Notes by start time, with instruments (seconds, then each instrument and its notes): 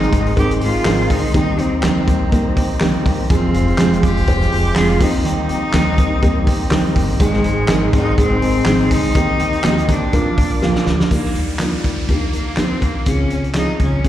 Already playing: steel-string acoustic guitar G#2 D#3 G#3 C4 D#4 G#4, felt piano G#2 G#3 C4 D#4 G#4, cello D#4, tonewheel organ G#4 C5 D#5 C6
0.02 hi-hat pedal
0.12 upright bass G#1, steel-string acoustic guitar G#3 C4 D#4 G#4, kick, hi-hat pedal, open hi-hat
0.26 open hi-hat
0.36 upright bass G#1, felt piano G#3 C4 D#4 A#4, steel-string acoustic guitar G#3 C4 D#4 G#4, cello G4, kick, hi-hat pedal, open hi-hat
0.51 hi-hat pedal
0.61 upright bass G#1, steel-string acoustic guitar G#3 C4 D#4 G#4, cello F4, hi-hat pedal, open hi-hat
0.85 upright bass G#1, steel-string acoustic guitar G#2 D#3 G#3 C4 D#4 G#4, felt piano G#3 C4 D#4 A#4, snare, clap, hi-hat pedal, open hi-hat
1.09 steel-string acoustic guitar G#3 C4 D#4 G#4, cello D#4, kick, hi-hat pedal, open hi-hat
1.34 upright bass D#2, steel-string acoustic guitar D#3 G3 A#3 C4 G4, felt piano D#3 A#3 C4 D#4 G4, cello D#4, tonewheel organ G4 A#5, kick, hi-hat pedal, open hi-hat
1.58 upright bass D#2, steel-string acoustic guitar A#3 C4 G4, cello C4, hi-hat pedal, open hi-hat
1.82 upright bass D#2, steel-string acoustic guitar D#3 G3 A#3 C4 G4, felt piano A#3 C4 D#4 G4, cello C4, snare, clap, hi-hat pedal, open hi-hat
2.06 upright bass D#2, steel-string acoustic guitar A#3 C4 G4, kick, hi-hat pedal, open hi-hat
2.31 upright bass D#2, steel-string acoustic guitar G3 A#3 C4 G4, felt piano A#3 C4 D#4 A#4, kick, hi-hat pedal, open hi-hat
2.55 upright bass D#2, steel-string acoustic guitar A#3 C4 G4, kick, hi-hat pedal, open hi-hat
2.80 upright bass D#2, steel-string acoustic guitar D#3 G3 A#3 C4 G4, felt piano A#3 C4 D#4 G4, snare, clap, hi-hat pedal, open hi-hat
3.04 upright bass E2, steel-string acoustic guitar A#3 C4 G4, kick, hi-hat pedal, open hi-hat
3.29 upright bass F1, steel-string acoustic guitar F2 C3 F3 G#3 F4 G#4, felt piano G#3 C4 F4 G#4, tonewheel organ G#3 F5 C6, cello C4, kick, hi-hat pedal, open hi-hat
3.52 upright bass F1, steel-string acoustic guitar F3 G#3 F4 G#4, hi-hat pedal, open hi-hat
3.68 open hi-hat
3.78 upright bass F1, steel-string acoustic guitar F2 C3 F3 G#3 F4 G#4, felt piano G#3 C4 F4 G#4, snare, clap, hi-hat pedal, open hi-hat
3.93 hi-hat pedal
4.02 upright bass F1, steel-string acoustic guitar F3 G#3 F4 G#4, cello G4, kick, hi-hat pedal, open hi-hat
4.17 open hi-hat
4.26 upright bass F1, steel-string acoustic guitar F3 G#3 F4 G#4, felt piano G#3 C4 F4 C5, kick, hi-hat pedal, open hi-hat
4.41 hi-hat pedal
4.51 upright bass F1, steel-string acoustic guitar F3 G#3 F4 G#4, hi-hat pedal, open hi-hat
4.75 upright bass F1, steel-string acoustic guitar F2 C3 F3 G#3 F4 G#4, felt piano G#3 C4 F4 G#4, cello F4, snare, clap, hi-hat pedal, open hi-hat
4.99 upright bass D#2, felt piano D#3 A#3 C4 D#4 G4, steel-string acoustic guitar A#3 C4 G4, cello D#4, tonewheel organ G4 D#5 A#5, kick, hi-hat pedal, open hi-hat
5.24 steel-string acoustic guitar D#3 G3 A#3 C4 G4, cello D#4, hi-hat pedal, open hi-hat
5.48 upright bass D#2, steel-string acoustic guitar A#3 C4 G4, hi-hat pedal, open hi-hat
5.73 upright bass D#2, steel-string acoustic guitar D#3 G3 A#3 C4 G4, felt piano A#3 C4 D#4 G4, snare, clap, hi-hat pedal, open hi-hat
5.97 upright bass D#2, steel-string acoustic guitar A#3 C4 G4, kick, hi-hat pedal, open hi-hat
6.22 upright bass D#2, steel-string acoustic guitar G3 A#3 C4 G4, felt piano A#3 C4 D#4 G4, kick, hi-hat pedal, open hi-hat
6.46 upright bass D#2, steel-string acoustic guitar A#3 C4 G4, kick, hi-hat pedal, open hi-hat
6.71 upright bass D#2, steel-string acoustic guitar D#3 G3 A#3 C4 G4, felt piano A#3 C4 D#4 G4, snare, clap, hi-hat pedal, open hi-hat
6.95 upright bass G1, steel-string acoustic guitar A#3 C4 G4, kick, hi-hat pedal, open hi-hat
7.19 upright bass G#1, steel-string acoustic guitar G#2 D#3 G#3 C4 D#4 G#4, felt piano G#2 G#3 C4 D#4 G#4, cello G#3, tonewheel organ G#4 C5 C6, kick, hi-hat pedal, open hi-hat
7.33 snare
7.43 upright bass G#1, steel-string acoustic guitar G#3 C4 D#4 G#4, hi-hat pedal, open hi-hat
7.68 upright bass G#1, steel-string acoustic guitar G#2 D#3 G#3 C4 D#4 G#4, felt piano G#3 C4 D#4 A#4, snare, clap, hi-hat pedal, open hi-hat
7.92 upright bass G#1, steel-string acoustic guitar G#3 C4 D#4 G#4, cello D#4, kick, hi-hat pedal, open hi-hat
8.16 upright bass G#1, steel-string acoustic guitar G#3 C4 D#4 G#4, felt piano G#3 C4 D#4 G#4, cello C4, kick, hi-hat pedal, open hi-hat
8.41 upright bass G#1, steel-string acoustic guitar G#3 C4 D#4 G#4, hi-hat pedal, open hi-hat
8.65 upright bass G#1, steel-string acoustic guitar G#2 D#3 G#3 C4 D#4 G#4, felt piano G#3 C4 D#4 G#4, snare, clap, hi-hat pedal, open hi-hat
8.90 upright bass D2, steel-string acoustic guitar G#3 C4 D#4 G#4, cello D#4, kick, hi-hat pedal, open hi-hat
9.15 upright bass D#2, felt piano D#3 A#3 C4 D#4 G4, steel-string acoustic guitar D#3 A#3 C4 G4, tonewheel organ A#4 G5 C6, kick, hi-hat pedal, open hi-hat
9.39 upright bass D#2, steel-string acoustic guitar A#3 C4 G4, hi-hat pedal, open hi-hat
9.53 open hi-hat
9.63 upright bass D#2, steel-string acoustic guitar D#3 A#3 C4 G4, felt piano A#3 C4 D#4 F#4, snare, clap, hi-hat pedal, open hi-hat
9.70 felt piano G4
9.78 hi-hat pedal
9.88 upright bass D#2, steel-string acoustic guitar A#3 C4 G4, cello D4, kick, hi-hat pedal, open hi-hat
10.12 upright bass A#1, felt piano A#2 A#3 D4 F4 A#4, steel-string acoustic guitar F3 A#3 D4 F4, tonewheel organ D5 F5 D6, kick, hi-hat pedal, open hi-hat
10.37 upright bass A#1, steel-string acoustic guitar A#3 D4 F4, kick, hi-hat pedal, open hi-hat
10.61 upright bass A#1, steel-string acoustic guitar A#2 F3 A#3 D4 F4, felt piano A#3 D4 F4 G4, snare
10.75 snare
10.86 upright bass D2, steel-string acoustic guitar A#3 D4 F4, snare
11.00 snare
11.11 upright bass D#2, felt piano D#3 A#3 D4 D#4 G4, cello A#3, kick, closed hi-hat, downlifter
11.25 snare
11.35 upright bass D#2, cello G3, closed hi-hat
11.49 closed hi-hat
11.59 cello G3, felt piano A#3 D4 D#4 F4, snare, clap, closed hi-hat
11.84 upright bass D#2, kick, closed hi-hat
12.08 upright bass D#2, felt piano A#3 D4 D#4 G4, cello A#3, kick, closed hi-hat
12.33 upright bass D#2, cello A#3, closed hi-hat
12.57 upright bass D#2, felt piano A#3 D4 D#4 G4, cello C4, snare, clap, closed hi-hat
12.82 upright bass D#2, cello A#3, kick, closed hi-hat
13.06 upright bass C#2, felt piano C#3 C4 C#4 F4 G#4, cello C#4, kick, closed hi-hat
13.30 upright bass C#2, cello C#4, closed hi-hat
13.44 closed hi-hat
13.54 felt piano C4 C#4 F4 G#4, cello D#4, snare, clap, closed hi-hat
13.79 upright bass C#2, cello C#4, kick, closed hi-hat
14.04 upright bass C#2, felt piano C#3 C4 F4 G#4, kick, closed hi-hat